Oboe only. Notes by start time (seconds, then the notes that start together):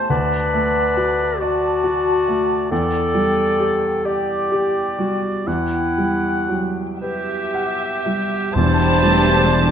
Already playing: C5
0.11 D5
1.40 D5
2.72 D5
4.06 D5
5.47 F#5
7.01 G4
8.54 C5